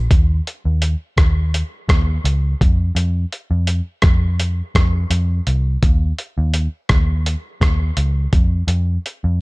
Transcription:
0.11 D#2, kick, closed hi-hat
0.47 closed hi-hat
0.65 D#2
0.82 closed hi-hat
1.17 D#2, kick, cross-stick, closed hi-hat
1.54 closed hi-hat
1.88 D#2, kick, cross-stick, closed hi-hat
2.24 C#2, closed hi-hat
2.61 F2, kick, closed hi-hat
2.95 F2, closed hi-hat
3.32 closed hi-hat
3.51 F2
3.67 closed hi-hat
4.02 F2, kick, cross-stick, closed hi-hat
4.40 closed hi-hat
4.75 F2, kick, cross-stick, closed hi-hat
5.10 F2, closed hi-hat
5.47 C2, closed hi-hat
5.83 D#2, kick, closed hi-hat
6.18 closed hi-hat
6.38 D#2
6.54 closed hi-hat
6.89 D#2, kick, cross-stick, closed hi-hat
7.26 closed hi-hat
7.61 D#2, kick, cross-stick, closed hi-hat
7.97 C#2, closed hi-hat
8.33 F2, kick, closed hi-hat
8.67 F2, closed hi-hat
9.06 closed hi-hat
9.24 F2

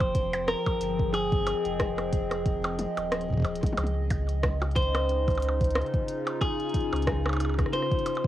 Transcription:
Already playing: F1 F3 A#3 C4 F4 C5 G5
0.00 kick, closed hi-hat, percussion blips
0.08 G#4
0.15 kick, closed hi-hat
0.33 closed hi-hat, percussion blips
0.48 A#4, cross-stick, closed hi-hat
0.66 D#5, kick, closed hi-hat, percussion blips
0.81 G1, closed hi-hat
0.99 kick
1.14 G#4, closed hi-hat, percussion blips
1.32 kick, closed hi-hat
1.47 closed hi-hat, percussion blips
1.65 F1, closed hi-hat
1.80 kick, cross-stick, closed hi-hat, high tom
1.98 cross-stick, closed hi-hat, percussion blips
2.13 kick, closed hi-hat
2.31 cross-stick, closed hi-hat, percussion blips
2.46 kick, closed hi-hat
2.64 closed hi-hat, percussion blips
2.79 closed hi-hat, high tom
2.97 D#1, closed hi-hat, percussion blips
3.12 cross-stick, closed hi-hat
3.21 closed hi-hat
3.30 kick
3.33 kick
3.37 kick
3.40 kick
3.42 kick, closed hi-hat, percussion blips
3.56 closed hi-hat
3.63 kick, closed hi-hat, high tom
3.67 closed hi-hat
3.73 high tom
3.78 C#2 C#3, closed hi-hat, percussion blips
3.84 closed hi-hat, high tom
4.05 C#4
4.11 kick, closed hi-hat, percussion blips
4.25 D#4, closed hi-hat
4.43 kick, cross-stick, closed hi-hat, high tom
4.62 cross-stick, closed hi-hat, percussion blips
4.72 closed hi-hat
4.76 C5, kick, closed hi-hat
4.83 closed hi-hat
4.95 cross-stick, closed hi-hat, percussion blips
5.09 closed hi-hat
5.28 kick, closed hi-hat, percussion blips
5.30 closed hi-hat
5.35 closed hi-hat
5.38 F4, closed hi-hat, percussion blips
5.40 closed hi-hat
5.42 closed hi-hat
5.49 percussion blips
5.61 kick, closed hi-hat
5.64 closed hi-hat
5.71 closed hi-hat
5.75 cross-stick, closed hi-hat, percussion blips
5.82 closed hi-hat
5.86 closed hi-hat
5.94 kick, closed hi-hat
6.08 closed hi-hat
6.27 closed hi-hat, percussion blips
6.41 G#4, kick, closed hi-hat, percussion blips
6.60 closed hi-hat
6.69 closed hi-hat
6.74 kick, closed hi-hat
6.80 closed hi-hat
6.93 C#2, closed hi-hat, percussion blips
6.96 closed hi-hat
7.02 closed hi-hat
7.07 kick, cross-stick, closed hi-hat, high tom
7.26 cross-stick, percussion blips
7.29 closed hi-hat, percussion blips
7.33 percussion blips
7.37 closed hi-hat, percussion blips
7.40 percussion blips
7.45 percussion blips
7.49 percussion blips
7.54 percussion blips
7.59 kick, cross-stick, closed hi-hat, percussion blips
7.66 cross-stick
7.73 C5, cross-stick, closed hi-hat
7.82 cross-stick
7.92 kick, closed hi-hat
7.99 closed hi-hat
8.06 closed hi-hat, percussion blips
8.15 closed hi-hat, percussion blips

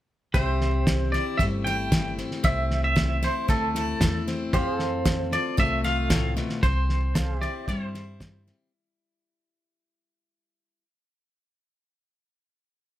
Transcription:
0.34 C2 C3 C4 G4 C5 E5, kick, snare
0.61 snare
0.87 E3, kick, snare, hi-hat pedal
1.12 E4 D5, snare
1.38 G1 G2 A3 E5, kick, snare
1.64 E4 G5, snare
1.92 E3, kick, snare, hi-hat pedal
2.18 C4, snare
2.31 snare
2.44 C2 C3 C4 E5, kick, snare
2.71 snare
2.84 E5
2.96 E3, kick, snare, hi-hat pedal
3.23 E4 C5, snare
3.48 D2 G2 A3 A4, kick, snare
3.75 E4, snare
4.01 E2 E3, kick, snare, hi-hat pedal
4.27 C4, snare
4.53 F2 C4 G4 C5 F5, kick, snare
4.79 A4, snare
5.05 F3, kick, snare, hi-hat pedal
5.32 F4 D5, snare
5.57 C2 C3 A3 E5, kick, snare
5.84 F4 F5, snare
6.10 A2, kick, snare, hi-hat pedal
6.37 B2, snare
6.49 snare
6.63 C2 C3 C4 C5, kick, snare
6.89 snare
7.15 E3 A4 C5 F5, kick, snare, hi-hat pedal
7.37 G4 E5
7.41 E4 D5, snare
7.68 G2 G3 C5, kick, snare
7.94 E4, snare
8.20 E3, kick, snare, hi-hat pedal
8.47 C4, snare

